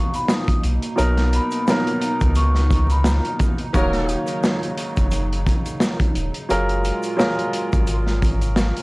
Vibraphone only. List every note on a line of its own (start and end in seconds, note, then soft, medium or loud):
0.00 0.11 C#6 medium
0.15 0.29 B5 medium
0.28 0.60 D#6 medium
1.35 1.65 B5 medium
2.01 2.18 A#5 medium
2.36 2.86 C#6 medium
2.91 3.04 B5 medium
3.05 3.36 A#5 medium